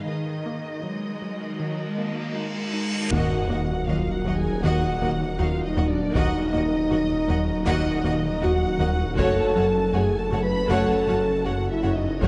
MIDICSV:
0, 0, Header, 1, 14, 480
1, 0, Start_track
1, 0, Tempo, 759494
1, 46, Time_signature, 4, 2, 24, 8
1, 7760, End_track
2, 0, Start_track
2, 0, Title_t, "Violin section"
2, 0, Program_c, 0, 48
2, 51, Note_on_c, 0, 75, 41
2, 1463, Note_off_c, 0, 75, 0
2, 1960, Note_on_c, 0, 78, 53
2, 2418, Note_off_c, 0, 78, 0
2, 2439, Note_on_c, 0, 77, 49
2, 2599, Note_on_c, 0, 78, 44
2, 2603, Note_off_c, 0, 77, 0
2, 2761, Note_on_c, 0, 80, 50
2, 2763, Note_off_c, 0, 78, 0
2, 2920, Note_off_c, 0, 80, 0
2, 2924, Note_on_c, 0, 78, 51
2, 3402, Note_on_c, 0, 77, 55
2, 3405, Note_off_c, 0, 78, 0
2, 3564, Note_off_c, 0, 77, 0
2, 3565, Note_on_c, 0, 75, 49
2, 3723, Note_off_c, 0, 75, 0
2, 3725, Note_on_c, 0, 74, 52
2, 3882, Note_off_c, 0, 74, 0
2, 3886, Note_on_c, 0, 75, 66
2, 4828, Note_off_c, 0, 75, 0
2, 4835, Note_on_c, 0, 75, 60
2, 5311, Note_off_c, 0, 75, 0
2, 5324, Note_on_c, 0, 78, 70
2, 5799, Note_on_c, 0, 81, 67
2, 5805, Note_off_c, 0, 78, 0
2, 6273, Note_off_c, 0, 81, 0
2, 6281, Note_on_c, 0, 80, 57
2, 6439, Note_on_c, 0, 81, 58
2, 6443, Note_off_c, 0, 80, 0
2, 6601, Note_on_c, 0, 83, 63
2, 6603, Note_off_c, 0, 81, 0
2, 6758, Note_on_c, 0, 81, 65
2, 6761, Note_off_c, 0, 83, 0
2, 7232, Note_on_c, 0, 78, 56
2, 7242, Note_off_c, 0, 81, 0
2, 7399, Note_off_c, 0, 78, 0
2, 7399, Note_on_c, 0, 76, 46
2, 7554, Note_on_c, 0, 75, 48
2, 7560, Note_off_c, 0, 76, 0
2, 7718, Note_on_c, 0, 73, 50
2, 7720, Note_off_c, 0, 75, 0
2, 7760, Note_off_c, 0, 73, 0
2, 7760, End_track
3, 0, Start_track
3, 0, Title_t, "Violin section"
3, 0, Program_c, 1, 48
3, 1976, Note_on_c, 1, 78, 41
3, 1977, Note_on_c, 1, 75, 44
3, 2195, Note_off_c, 1, 75, 0
3, 2195, Note_off_c, 1, 78, 0
3, 2213, Note_on_c, 1, 75, 30
3, 2216, Note_on_c, 1, 78, 29
3, 2264, Note_off_c, 1, 75, 0
3, 2267, Note_off_c, 1, 78, 0
3, 2456, Note_on_c, 1, 75, 35
3, 2459, Note_on_c, 1, 78, 35
3, 2507, Note_off_c, 1, 75, 0
3, 2510, Note_off_c, 1, 78, 0
3, 2696, Note_on_c, 1, 75, 40
3, 2700, Note_on_c, 1, 78, 39
3, 2747, Note_off_c, 1, 75, 0
3, 2750, Note_off_c, 1, 78, 0
3, 2929, Note_on_c, 1, 75, 52
3, 2929, Note_on_c, 1, 78, 60
3, 3151, Note_off_c, 1, 75, 0
3, 3151, Note_off_c, 1, 78, 0
3, 3174, Note_on_c, 1, 75, 41
3, 3174, Note_on_c, 1, 78, 42
3, 3225, Note_off_c, 1, 75, 0
3, 3225, Note_off_c, 1, 78, 0
3, 3405, Note_on_c, 1, 75, 44
3, 3405, Note_on_c, 1, 78, 49
3, 3456, Note_off_c, 1, 75, 0
3, 3456, Note_off_c, 1, 78, 0
3, 3648, Note_on_c, 1, 75, 52
3, 3648, Note_on_c, 1, 78, 47
3, 3699, Note_off_c, 1, 75, 0
3, 3699, Note_off_c, 1, 78, 0
3, 3891, Note_on_c, 1, 75, 57
3, 3891, Note_on_c, 1, 78, 49
3, 4112, Note_off_c, 1, 75, 0
3, 4112, Note_off_c, 1, 78, 0
3, 4126, Note_on_c, 1, 75, 35
3, 4126, Note_on_c, 1, 78, 43
3, 4177, Note_off_c, 1, 75, 0
3, 4177, Note_off_c, 1, 78, 0
3, 4371, Note_on_c, 1, 78, 47
3, 4374, Note_on_c, 1, 75, 36
3, 4421, Note_off_c, 1, 78, 0
3, 4425, Note_off_c, 1, 75, 0
3, 4607, Note_on_c, 1, 75, 52
3, 4609, Note_on_c, 1, 78, 42
3, 4657, Note_off_c, 1, 75, 0
3, 4659, Note_off_c, 1, 78, 0
3, 4842, Note_on_c, 1, 75, 72
3, 4842, Note_on_c, 1, 78, 70
3, 5067, Note_off_c, 1, 75, 0
3, 5067, Note_off_c, 1, 78, 0
3, 5084, Note_on_c, 1, 78, 49
3, 5085, Note_on_c, 1, 75, 48
3, 5135, Note_off_c, 1, 78, 0
3, 5136, Note_off_c, 1, 75, 0
3, 5324, Note_on_c, 1, 75, 53
3, 5324, Note_on_c, 1, 78, 45
3, 5375, Note_off_c, 1, 75, 0
3, 5375, Note_off_c, 1, 78, 0
3, 5562, Note_on_c, 1, 75, 51
3, 5562, Note_on_c, 1, 78, 54
3, 5612, Note_off_c, 1, 75, 0
3, 5612, Note_off_c, 1, 78, 0
3, 5800, Note_on_c, 1, 73, 64
3, 5802, Note_on_c, 1, 78, 55
3, 6026, Note_off_c, 1, 73, 0
3, 6027, Note_off_c, 1, 78, 0
3, 6041, Note_on_c, 1, 78, 40
3, 6042, Note_on_c, 1, 73, 41
3, 6092, Note_off_c, 1, 78, 0
3, 6093, Note_off_c, 1, 73, 0
3, 6277, Note_on_c, 1, 73, 41
3, 6280, Note_on_c, 1, 78, 39
3, 6327, Note_off_c, 1, 73, 0
3, 6330, Note_off_c, 1, 78, 0
3, 6525, Note_on_c, 1, 78, 46
3, 6528, Note_on_c, 1, 73, 45
3, 6575, Note_off_c, 1, 78, 0
3, 6579, Note_off_c, 1, 73, 0
3, 6759, Note_on_c, 1, 73, 63
3, 6763, Note_on_c, 1, 78, 65
3, 6986, Note_off_c, 1, 73, 0
3, 6988, Note_off_c, 1, 78, 0
3, 6999, Note_on_c, 1, 73, 44
3, 7000, Note_on_c, 1, 78, 45
3, 7049, Note_off_c, 1, 73, 0
3, 7051, Note_off_c, 1, 78, 0
3, 7237, Note_on_c, 1, 73, 41
3, 7239, Note_on_c, 1, 78, 45
3, 7287, Note_off_c, 1, 73, 0
3, 7290, Note_off_c, 1, 78, 0
3, 7476, Note_on_c, 1, 73, 42
3, 7476, Note_on_c, 1, 78, 44
3, 7526, Note_off_c, 1, 78, 0
3, 7527, Note_off_c, 1, 73, 0
3, 7721, Note_on_c, 1, 73, 47
3, 7724, Note_on_c, 1, 78, 43
3, 7760, Note_off_c, 1, 73, 0
3, 7760, Note_off_c, 1, 78, 0
3, 7760, End_track
4, 0, Start_track
4, 0, Title_t, "French horn section"
4, 0, Program_c, 2, 60
4, 1966, Note_on_c, 2, 66, 59
4, 2421, Note_off_c, 2, 66, 0
4, 2437, Note_on_c, 2, 65, 53
4, 2594, Note_on_c, 2, 66, 56
4, 2602, Note_off_c, 2, 65, 0
4, 2760, Note_off_c, 2, 66, 0
4, 2761, Note_on_c, 2, 68, 60
4, 2924, Note_off_c, 2, 68, 0
4, 2936, Note_on_c, 2, 66, 68
4, 3402, Note_off_c, 2, 66, 0
4, 3408, Note_on_c, 2, 65, 65
4, 3564, Note_off_c, 2, 65, 0
4, 3570, Note_on_c, 2, 63, 68
4, 3717, Note_on_c, 2, 62, 61
4, 3725, Note_off_c, 2, 63, 0
4, 3873, Note_on_c, 2, 63, 79
4, 3882, Note_off_c, 2, 62, 0
4, 4834, Note_off_c, 2, 63, 0
4, 4841, Note_on_c, 2, 63, 74
4, 5314, Note_off_c, 2, 63, 0
4, 5321, Note_on_c, 2, 66, 86
4, 5792, Note_on_c, 2, 69, 78
4, 5804, Note_off_c, 2, 66, 0
4, 6269, Note_off_c, 2, 69, 0
4, 6280, Note_on_c, 2, 68, 66
4, 6437, Note_on_c, 2, 69, 75
4, 6443, Note_off_c, 2, 68, 0
4, 6589, Note_on_c, 2, 71, 70
4, 6598, Note_off_c, 2, 69, 0
4, 6755, Note_off_c, 2, 71, 0
4, 6760, Note_on_c, 2, 69, 66
4, 7238, Note_on_c, 2, 66, 68
4, 7243, Note_off_c, 2, 69, 0
4, 7396, Note_on_c, 2, 64, 61
4, 7402, Note_off_c, 2, 66, 0
4, 7543, Note_on_c, 2, 63, 54
4, 7558, Note_off_c, 2, 64, 0
4, 7710, Note_on_c, 2, 61, 61
4, 7715, Note_off_c, 2, 63, 0
4, 7760, Note_off_c, 2, 61, 0
4, 7760, End_track
5, 0, Start_track
5, 0, Title_t, "Ambient pad"
5, 0, Program_c, 3, 92
5, 0, Note_on_c, 3, 51, 52
5, 0, Note_on_c, 3, 63, 61
5, 43, Note_on_c, 3, 66, 52
5, 43, Note_on_c, 3, 70, 50
5, 1958, Note_off_c, 3, 63, 0
5, 1961, Note_off_c, 3, 70, 0
5, 1962, Note_off_c, 3, 51, 0
5, 1964, Note_off_c, 3, 66, 0
5, 1966, Note_on_c, 3, 54, 63
5, 1966, Note_on_c, 3, 63, 57
5, 1969, Note_on_c, 3, 70, 61
5, 1971, Note_on_c, 3, 66, 61
5, 3861, Note_off_c, 3, 54, 0
5, 3861, Note_off_c, 3, 63, 0
5, 3862, Note_off_c, 3, 70, 0
5, 3863, Note_off_c, 3, 66, 0
5, 3882, Note_on_c, 3, 70, 65
5, 3883, Note_on_c, 3, 66, 57
5, 3884, Note_on_c, 3, 54, 57
5, 3885, Note_on_c, 3, 63, 60
5, 5779, Note_off_c, 3, 66, 0
5, 5779, Note_off_c, 3, 70, 0
5, 5780, Note_off_c, 3, 54, 0
5, 5780, Note_off_c, 3, 63, 0
5, 5796, Note_on_c, 3, 61, 62
5, 5797, Note_on_c, 3, 66, 68
5, 5799, Note_on_c, 3, 69, 57
5, 5802, Note_on_c, 3, 54, 66
5, 7696, Note_off_c, 3, 66, 0
5, 7699, Note_off_c, 3, 54, 0
5, 7715, Note_off_c, 3, 61, 0
5, 7717, Note_off_c, 3, 69, 0
5, 7723, Note_on_c, 3, 54, 62
5, 7723, Note_on_c, 3, 61, 60
5, 7723, Note_on_c, 3, 66, 60
5, 7725, Note_on_c, 3, 69, 59
5, 7760, Note_off_c, 3, 54, 0
5, 7760, Note_off_c, 3, 61, 0
5, 7760, Note_off_c, 3, 66, 0
5, 7760, Note_off_c, 3, 69, 0
5, 7760, End_track
6, 0, Start_track
6, 0, Title_t, "Viola section"
6, 0, Program_c, 4, 48
6, 1967, Note_on_c, 4, 58, 52
6, 1968, Note_on_c, 4, 66, 55
6, 2190, Note_off_c, 4, 58, 0
6, 2190, Note_off_c, 4, 66, 0
6, 2208, Note_on_c, 4, 66, 38
6, 2210, Note_on_c, 4, 58, 38
6, 2259, Note_off_c, 4, 66, 0
6, 2260, Note_off_c, 4, 58, 0
6, 2447, Note_on_c, 4, 66, 36
6, 2448, Note_on_c, 4, 58, 37
6, 2498, Note_off_c, 4, 58, 0
6, 2498, Note_off_c, 4, 66, 0
6, 2684, Note_on_c, 4, 66, 35
6, 2686, Note_on_c, 4, 58, 33
6, 2735, Note_off_c, 4, 66, 0
6, 2736, Note_off_c, 4, 58, 0
6, 2927, Note_on_c, 4, 66, 55
6, 2928, Note_on_c, 4, 58, 51
6, 3150, Note_off_c, 4, 58, 0
6, 3150, Note_off_c, 4, 66, 0
6, 3168, Note_on_c, 4, 58, 44
6, 3168, Note_on_c, 4, 66, 42
6, 3218, Note_off_c, 4, 58, 0
6, 3219, Note_off_c, 4, 66, 0
6, 3411, Note_on_c, 4, 66, 39
6, 3412, Note_on_c, 4, 58, 40
6, 3462, Note_off_c, 4, 66, 0
6, 3463, Note_off_c, 4, 58, 0
6, 3644, Note_on_c, 4, 58, 38
6, 3646, Note_on_c, 4, 66, 42
6, 3695, Note_off_c, 4, 58, 0
6, 3697, Note_off_c, 4, 66, 0
6, 3881, Note_on_c, 4, 58, 62
6, 3881, Note_on_c, 4, 66, 55
6, 4107, Note_off_c, 4, 58, 0
6, 4107, Note_off_c, 4, 66, 0
6, 4122, Note_on_c, 4, 58, 45
6, 4122, Note_on_c, 4, 66, 44
6, 4173, Note_off_c, 4, 58, 0
6, 4173, Note_off_c, 4, 66, 0
6, 4361, Note_on_c, 4, 58, 45
6, 4363, Note_on_c, 4, 66, 46
6, 4411, Note_off_c, 4, 58, 0
6, 4414, Note_off_c, 4, 66, 0
6, 4604, Note_on_c, 4, 58, 39
6, 4605, Note_on_c, 4, 66, 40
6, 4655, Note_off_c, 4, 58, 0
6, 4656, Note_off_c, 4, 66, 0
6, 4844, Note_on_c, 4, 58, 61
6, 4846, Note_on_c, 4, 66, 63
6, 5068, Note_off_c, 4, 58, 0
6, 5069, Note_off_c, 4, 66, 0
6, 5084, Note_on_c, 4, 66, 42
6, 5086, Note_on_c, 4, 58, 45
6, 5135, Note_off_c, 4, 66, 0
6, 5137, Note_off_c, 4, 58, 0
6, 5322, Note_on_c, 4, 58, 58
6, 5322, Note_on_c, 4, 66, 52
6, 5372, Note_off_c, 4, 58, 0
6, 5373, Note_off_c, 4, 66, 0
6, 5561, Note_on_c, 4, 58, 43
6, 5565, Note_on_c, 4, 66, 52
6, 5611, Note_off_c, 4, 58, 0
6, 5615, Note_off_c, 4, 66, 0
6, 5798, Note_on_c, 4, 66, 68
6, 5801, Note_on_c, 4, 57, 68
6, 6025, Note_off_c, 4, 66, 0
6, 6027, Note_off_c, 4, 57, 0
6, 6037, Note_on_c, 4, 57, 49
6, 6037, Note_on_c, 4, 66, 49
6, 6087, Note_off_c, 4, 66, 0
6, 6088, Note_off_c, 4, 57, 0
6, 6277, Note_on_c, 4, 66, 41
6, 6281, Note_on_c, 4, 57, 41
6, 6327, Note_off_c, 4, 66, 0
6, 6331, Note_off_c, 4, 57, 0
6, 6514, Note_on_c, 4, 57, 39
6, 6517, Note_on_c, 4, 66, 39
6, 6565, Note_off_c, 4, 57, 0
6, 6567, Note_off_c, 4, 66, 0
6, 6758, Note_on_c, 4, 66, 54
6, 6759, Note_on_c, 4, 57, 59
6, 6985, Note_off_c, 4, 66, 0
6, 6986, Note_off_c, 4, 57, 0
6, 7005, Note_on_c, 4, 57, 41
6, 7005, Note_on_c, 4, 66, 49
6, 7055, Note_off_c, 4, 66, 0
6, 7056, Note_off_c, 4, 57, 0
6, 7243, Note_on_c, 4, 66, 41
6, 7244, Note_on_c, 4, 57, 42
6, 7294, Note_off_c, 4, 66, 0
6, 7295, Note_off_c, 4, 57, 0
6, 7487, Note_on_c, 4, 57, 40
6, 7487, Note_on_c, 4, 66, 39
6, 7537, Note_off_c, 4, 57, 0
6, 7537, Note_off_c, 4, 66, 0
6, 7723, Note_on_c, 4, 57, 56
6, 7726, Note_on_c, 4, 66, 46
6, 7760, Note_off_c, 4, 57, 0
6, 7760, Note_off_c, 4, 66, 0
6, 7760, End_track
7, 0, Start_track
7, 0, Title_t, "Synth arpeggio sound"
7, 0, Program_c, 5, 84
7, 52, Note_on_c, 5, 51, 57
7, 194, Note_off_c, 5, 51, 0
7, 290, Note_on_c, 5, 58, 43
7, 433, Note_off_c, 5, 58, 0
7, 527, Note_on_c, 5, 54, 46
7, 671, Note_off_c, 5, 54, 0
7, 772, Note_on_c, 5, 54, 46
7, 914, Note_off_c, 5, 54, 0
7, 1009, Note_on_c, 5, 51, 61
7, 1153, Note_off_c, 5, 51, 0
7, 1252, Note_on_c, 5, 58, 46
7, 1394, Note_off_c, 5, 58, 0
7, 1489, Note_on_c, 5, 63, 42
7, 1632, Note_off_c, 5, 63, 0
7, 1729, Note_on_c, 5, 63, 49
7, 1872, Note_off_c, 5, 63, 0
7, 1971, Note_on_c, 5, 51, 62
7, 2114, Note_off_c, 5, 51, 0
7, 2211, Note_on_c, 5, 58, 51
7, 2354, Note_off_c, 5, 58, 0
7, 2451, Note_on_c, 5, 54, 54
7, 2593, Note_off_c, 5, 54, 0
7, 2689, Note_on_c, 5, 54, 46
7, 2832, Note_off_c, 5, 54, 0
7, 2932, Note_on_c, 5, 51, 71
7, 3074, Note_off_c, 5, 51, 0
7, 3172, Note_on_c, 5, 58, 54
7, 3315, Note_off_c, 5, 58, 0
7, 3406, Note_on_c, 5, 63, 48
7, 3550, Note_off_c, 5, 63, 0
7, 3646, Note_on_c, 5, 63, 50
7, 3790, Note_off_c, 5, 63, 0
7, 3885, Note_on_c, 5, 51, 63
7, 4029, Note_off_c, 5, 51, 0
7, 4124, Note_on_c, 5, 58, 52
7, 4269, Note_off_c, 5, 58, 0
7, 4362, Note_on_c, 5, 54, 58
7, 4507, Note_off_c, 5, 54, 0
7, 4600, Note_on_c, 5, 54, 52
7, 4746, Note_off_c, 5, 54, 0
7, 4842, Note_on_c, 5, 51, 79
7, 4987, Note_off_c, 5, 51, 0
7, 5083, Note_on_c, 5, 58, 62
7, 5228, Note_off_c, 5, 58, 0
7, 5323, Note_on_c, 5, 63, 50
7, 5468, Note_off_c, 5, 63, 0
7, 5559, Note_on_c, 5, 63, 62
7, 5706, Note_off_c, 5, 63, 0
7, 5804, Note_on_c, 5, 54, 70
7, 5949, Note_off_c, 5, 54, 0
7, 6042, Note_on_c, 5, 61, 54
7, 6188, Note_off_c, 5, 61, 0
7, 6285, Note_on_c, 5, 57, 61
7, 6430, Note_off_c, 5, 57, 0
7, 6525, Note_on_c, 5, 57, 56
7, 6669, Note_off_c, 5, 57, 0
7, 6767, Note_on_c, 5, 54, 69
7, 6911, Note_off_c, 5, 54, 0
7, 7007, Note_on_c, 5, 61, 59
7, 7151, Note_off_c, 5, 61, 0
7, 7251, Note_on_c, 5, 66, 48
7, 7394, Note_off_c, 5, 66, 0
7, 7487, Note_on_c, 5, 66, 53
7, 7631, Note_off_c, 5, 66, 0
7, 7728, Note_on_c, 5, 54, 66
7, 7760, Note_off_c, 5, 54, 0
7, 7760, End_track
8, 0, Start_track
8, 0, Title_t, "Analog synth bass"
8, 0, Program_c, 6, 38
8, 1969, Note_on_c, 6, 39, 58
8, 2112, Note_off_c, 6, 39, 0
8, 2208, Note_on_c, 6, 51, 54
8, 2352, Note_off_c, 6, 51, 0
8, 2447, Note_on_c, 6, 39, 54
8, 2591, Note_off_c, 6, 39, 0
8, 2686, Note_on_c, 6, 39, 61
8, 2830, Note_off_c, 6, 39, 0
8, 2929, Note_on_c, 6, 39, 67
8, 3072, Note_off_c, 6, 39, 0
8, 3170, Note_on_c, 6, 51, 56
8, 3313, Note_off_c, 6, 51, 0
8, 3409, Note_on_c, 6, 39, 47
8, 3552, Note_off_c, 6, 39, 0
8, 3645, Note_on_c, 6, 39, 52
8, 3790, Note_off_c, 6, 39, 0
8, 3888, Note_on_c, 6, 39, 67
8, 4032, Note_off_c, 6, 39, 0
8, 4130, Note_on_c, 6, 51, 57
8, 4273, Note_off_c, 6, 51, 0
8, 4372, Note_on_c, 6, 39, 53
8, 4514, Note_off_c, 6, 39, 0
8, 4608, Note_on_c, 6, 39, 64
8, 4752, Note_off_c, 6, 39, 0
8, 4846, Note_on_c, 6, 39, 78
8, 4990, Note_off_c, 6, 39, 0
8, 5089, Note_on_c, 6, 51, 55
8, 5232, Note_off_c, 6, 51, 0
8, 5328, Note_on_c, 6, 39, 51
8, 5471, Note_off_c, 6, 39, 0
8, 5568, Note_on_c, 6, 39, 61
8, 5712, Note_off_c, 6, 39, 0
8, 5802, Note_on_c, 6, 42, 70
8, 5947, Note_off_c, 6, 42, 0
8, 6039, Note_on_c, 6, 54, 57
8, 6185, Note_off_c, 6, 54, 0
8, 6277, Note_on_c, 6, 42, 55
8, 6424, Note_off_c, 6, 42, 0
8, 6519, Note_on_c, 6, 42, 64
8, 6665, Note_off_c, 6, 42, 0
8, 6758, Note_on_c, 6, 42, 79
8, 6905, Note_off_c, 6, 42, 0
8, 7003, Note_on_c, 6, 54, 61
8, 7148, Note_off_c, 6, 54, 0
8, 7245, Note_on_c, 6, 42, 47
8, 7390, Note_off_c, 6, 42, 0
8, 7481, Note_on_c, 6, 42, 52
8, 7627, Note_off_c, 6, 42, 0
8, 7724, Note_on_c, 6, 42, 66
8, 7760, Note_off_c, 6, 42, 0
8, 7760, End_track
9, 0, Start_track
9, 0, Title_t, "Cello section"
9, 0, Program_c, 7, 48
9, 47, Note_on_c, 7, 51, 33
9, 479, Note_off_c, 7, 51, 0
9, 529, Note_on_c, 7, 56, 44
9, 982, Note_off_c, 7, 56, 0
9, 1005, Note_on_c, 7, 54, 33
9, 1166, Note_off_c, 7, 54, 0
9, 1167, Note_on_c, 7, 56, 32
9, 1324, Note_off_c, 7, 56, 0
9, 1326, Note_on_c, 7, 58, 34
9, 1485, Note_on_c, 7, 56, 30
9, 1486, Note_off_c, 7, 58, 0
9, 1964, Note_on_c, 7, 39, 48
9, 1966, Note_off_c, 7, 56, 0
9, 2014, Note_off_c, 7, 39, 0
9, 2207, Note_on_c, 7, 39, 37
9, 2257, Note_off_c, 7, 39, 0
9, 2451, Note_on_c, 7, 39, 39
9, 2502, Note_off_c, 7, 39, 0
9, 2690, Note_on_c, 7, 39, 36
9, 2740, Note_off_c, 7, 39, 0
9, 2932, Note_on_c, 7, 39, 52
9, 2983, Note_off_c, 7, 39, 0
9, 3172, Note_on_c, 7, 39, 39
9, 3222, Note_off_c, 7, 39, 0
9, 3407, Note_on_c, 7, 39, 40
9, 3458, Note_off_c, 7, 39, 0
9, 3645, Note_on_c, 7, 39, 47
9, 3695, Note_off_c, 7, 39, 0
9, 3885, Note_on_c, 7, 39, 55
9, 3936, Note_off_c, 7, 39, 0
9, 4130, Note_on_c, 7, 39, 46
9, 4180, Note_off_c, 7, 39, 0
9, 4364, Note_on_c, 7, 39, 50
9, 4414, Note_off_c, 7, 39, 0
9, 4602, Note_on_c, 7, 39, 47
9, 4653, Note_off_c, 7, 39, 0
9, 4841, Note_on_c, 7, 39, 64
9, 4892, Note_off_c, 7, 39, 0
9, 5083, Note_on_c, 7, 39, 46
9, 5133, Note_off_c, 7, 39, 0
9, 5322, Note_on_c, 7, 39, 47
9, 5373, Note_off_c, 7, 39, 0
9, 5564, Note_on_c, 7, 39, 51
9, 5615, Note_off_c, 7, 39, 0
9, 5805, Note_on_c, 7, 42, 59
9, 5855, Note_off_c, 7, 42, 0
9, 6045, Note_on_c, 7, 42, 46
9, 6095, Note_off_c, 7, 42, 0
9, 6286, Note_on_c, 7, 42, 48
9, 6337, Note_off_c, 7, 42, 0
9, 6528, Note_on_c, 7, 42, 45
9, 6578, Note_off_c, 7, 42, 0
9, 6764, Note_on_c, 7, 42, 57
9, 6815, Note_off_c, 7, 42, 0
9, 7008, Note_on_c, 7, 42, 42
9, 7059, Note_off_c, 7, 42, 0
9, 7247, Note_on_c, 7, 42, 41
9, 7298, Note_off_c, 7, 42, 0
9, 7487, Note_on_c, 7, 42, 38
9, 7538, Note_off_c, 7, 42, 0
9, 7723, Note_on_c, 7, 42, 54
9, 7760, Note_off_c, 7, 42, 0
9, 7760, End_track
10, 0, Start_track
10, 0, Title_t, "Double bass section"
10, 0, Program_c, 8, 48
10, 1967, Note_on_c, 8, 39, 53
10, 2017, Note_off_c, 8, 39, 0
10, 2203, Note_on_c, 8, 39, 39
10, 2253, Note_off_c, 8, 39, 0
10, 2444, Note_on_c, 8, 39, 40
10, 2495, Note_off_c, 8, 39, 0
10, 2680, Note_on_c, 8, 39, 43
10, 2731, Note_off_c, 8, 39, 0
10, 2922, Note_on_c, 8, 39, 54
10, 2972, Note_off_c, 8, 39, 0
10, 3162, Note_on_c, 8, 39, 42
10, 3213, Note_off_c, 8, 39, 0
10, 3405, Note_on_c, 8, 39, 40
10, 3456, Note_off_c, 8, 39, 0
10, 3649, Note_on_c, 8, 39, 44
10, 3700, Note_off_c, 8, 39, 0
10, 3886, Note_on_c, 8, 39, 68
10, 3936, Note_off_c, 8, 39, 0
10, 4127, Note_on_c, 8, 39, 46
10, 4178, Note_off_c, 8, 39, 0
10, 4369, Note_on_c, 8, 39, 47
10, 4419, Note_off_c, 8, 39, 0
10, 4608, Note_on_c, 8, 39, 53
10, 4658, Note_off_c, 8, 39, 0
10, 4843, Note_on_c, 8, 39, 67
10, 4894, Note_off_c, 8, 39, 0
10, 5080, Note_on_c, 8, 39, 49
10, 5131, Note_off_c, 8, 39, 0
10, 5315, Note_on_c, 8, 39, 46
10, 5366, Note_off_c, 8, 39, 0
10, 5553, Note_on_c, 8, 39, 47
10, 5603, Note_off_c, 8, 39, 0
10, 5796, Note_on_c, 8, 30, 63
10, 5847, Note_off_c, 8, 30, 0
10, 6045, Note_on_c, 8, 30, 46
10, 6095, Note_off_c, 8, 30, 0
10, 6280, Note_on_c, 8, 30, 40
10, 6330, Note_off_c, 8, 30, 0
10, 6516, Note_on_c, 8, 30, 47
10, 6566, Note_off_c, 8, 30, 0
10, 6759, Note_on_c, 8, 30, 66
10, 6809, Note_off_c, 8, 30, 0
10, 7002, Note_on_c, 8, 30, 43
10, 7053, Note_off_c, 8, 30, 0
10, 7240, Note_on_c, 8, 30, 39
10, 7290, Note_off_c, 8, 30, 0
10, 7491, Note_on_c, 8, 30, 40
10, 7542, Note_off_c, 8, 30, 0
10, 7729, Note_on_c, 8, 30, 57
10, 7760, Note_off_c, 8, 30, 0
10, 7760, End_track
11, 0, Start_track
11, 0, Title_t, "Detuned saw bass"
11, 0, Program_c, 10, 39
11, 1974, Note_on_c, 10, 27, 57
11, 3865, Note_off_c, 10, 27, 0
11, 3886, Note_on_c, 10, 27, 56
11, 5805, Note_on_c, 10, 30, 60
11, 5815, Note_off_c, 10, 27, 0
11, 7719, Note_off_c, 10, 30, 0
11, 7723, Note_on_c, 10, 30, 60
11, 7760, Note_off_c, 10, 30, 0
11, 7760, End_track
12, 0, Start_track
12, 0, Title_t, "Reverse cymbal"
12, 0, Program_c, 11, 119
12, 46, Note_on_c, 11, 60, 34
12, 1966, Note_off_c, 11, 60, 0
12, 7760, End_track
13, 0, Start_track
13, 0, Title_t, "Sub drop"
13, 0, Program_c, 12, 103
13, 1966, Note_on_c, 12, 60, 52
13, 3886, Note_off_c, 12, 60, 0
13, 7760, End_track
14, 0, Start_track
14, 0, Title_t, "Taiko and cinematic ensemble drums"
14, 1967, Note_on_c, 9, 41, 53
14, 2030, Note_off_c, 9, 41, 0
14, 3887, Note_on_c, 9, 41, 77
14, 3950, Note_off_c, 9, 41, 0
14, 4847, Note_on_c, 9, 41, 67
14, 4910, Note_off_c, 9, 41, 0
14, 5804, Note_on_c, 9, 41, 75
14, 5867, Note_off_c, 9, 41, 0
14, 6761, Note_on_c, 9, 41, 74
14, 6825, Note_off_c, 9, 41, 0
14, 7723, Note_on_c, 9, 41, 79
14, 7760, Note_off_c, 9, 41, 0
14, 7760, End_track
0, 0, End_of_file